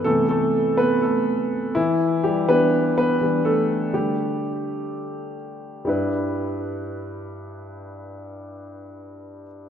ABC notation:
X:1
M:4/4
L:1/8
Q:1/4=124
K:G
V:1 name="Grand piano"
[A,A] [A,A]2 [B,B] [A,A]2 z [E,E]- | [E,E] [G,G] [B,B]2 [B,B]2 [A,A]2 | G6 z2 | [G,EB]8- |
[G,EB]8 |]
V:2 name="Grand piano" clef=bass
[C,E,B,]3 z4 z | z2 [E,G,D]3 [E,G,D] z2 | [D,G,A,] z6 z | G,,8- |
G,,8 |]